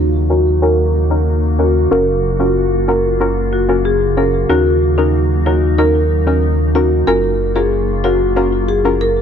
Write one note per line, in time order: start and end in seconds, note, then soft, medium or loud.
0.00 1.87 D#2 medium
0.00 7.03 C#3 medium
0.00 4.45 F#3 medium
0.00 7.03 A#3 medium
0.00 1.89 D#4 medium
0.00 9.22 F#4 medium
0.30 0.42 C#4 medium
0.30 0.42 D#4 medium
0.30 0.43 F#4 medium
0.30 0.42 F#4 medium
0.30 0.43 A#4 medium
0.62 0.74 C#4 medium
0.62 0.75 D#4 medium
0.62 0.75 F#4 medium
0.62 1.08 A#4 medium
0.62 0.75 A#4 loud
1.10 1.23 C#4 medium
1.10 1.23 D#4 medium
1.10 1.23 F#4 medium
1.10 1.23 A#4 medium
1.59 1.71 C#4 medium
1.59 1.71 D#4 medium
1.59 1.72 F#4 medium
1.59 1.71 F#4 medium
1.59 1.72 A#4 medium
1.91 4.46 F#1 medium
1.91 2.03 C#4 medium
1.91 2.04 F4 medium
1.91 4.47 F4 medium
1.91 2.04 F#4 medium
1.91 2.04 A#4 medium
1.91 2.18 A#4 loud
2.40 2.52 C#4 medium
2.40 2.52 F4 medium
2.40 2.52 F#4 medium
2.40 2.53 F#4 medium
2.40 2.52 A#4 medium
2.88 3.00 C#4 medium
2.88 3.00 F4 medium
2.88 3.01 F#4 medium
2.88 3.01 A#4 medium
3.20 3.33 C#4 medium
3.20 3.33 F4 medium
3.20 3.33 F#4 medium
3.20 3.33 A#4 medium
3.53 3.66 F#4 medium
3.69 3.81 C#4 medium
3.69 3.81 F4 medium
3.69 3.81 F#4 medium
3.69 3.81 A#4 medium
3.85 3.98 G#4 medium
4.17 4.29 C#4 medium
4.17 4.29 F4 medium
4.17 4.30 F#4 medium
4.17 4.30 A#4 medium
4.49 7.04 D#2 medium
4.49 7.05 F#3 medium
4.49 4.62 C#4 medium
4.49 4.62 D#4 medium
4.49 7.05 D#4 medium
4.49 4.76 F#4 loud
4.49 4.62 F#4 medium
4.49 4.62 A#4 loud
4.98 5.10 C#4 medium
4.98 5.10 D#4 medium
4.98 5.11 D#4 medium
4.98 5.10 F#4 medium
4.98 5.10 A#4 medium
5.46 5.58 C#4 medium
5.46 5.59 D#4 medium
5.46 5.59 F#4 medium
5.46 5.59 A#4 medium
5.78 5.91 C#4 medium
5.78 5.91 D#4 medium
5.78 5.91 F#4 medium
5.78 6.24 A#4 medium
5.78 5.91 A#4 loud
6.27 6.39 C#4 medium
6.27 6.39 D#4 medium
6.27 6.39 F#4 medium
6.27 6.39 A#4 medium
6.75 6.87 C#4 medium
6.75 6.88 D#4 medium
6.75 6.88 F#4 medium
6.75 6.88 A#4 medium
7.07 9.22 F#1 medium
7.07 9.22 C#3 medium
7.07 9.22 F#3 medium
7.07 9.22 A#3 medium
7.07 7.20 C#4 medium
7.07 7.20 F4 medium
7.07 9.22 F4 medium
7.07 7.20 F#4 medium
7.07 7.34 A#4 medium
7.07 7.20 A#4 loud
7.56 7.68 C#4 medium
7.56 7.68 F4 medium
7.56 7.68 F#4 medium
7.56 7.69 G#4 medium
7.56 7.68 A#4 medium
8.04 8.16 C#4 medium
8.04 8.17 F4 medium
8.04 8.17 F#4 medium
8.04 8.17 A#4 medium
8.36 8.49 C#4 medium
8.36 8.49 F4 medium
8.36 8.49 F#4 medium
8.36 8.49 A#4 medium
8.69 8.82 G#4 medium
8.85 8.97 C#4 medium
8.85 8.97 F4 medium
8.85 8.97 F#4 medium
8.85 8.97 A#4 medium
9.01 9.14 A#4 medium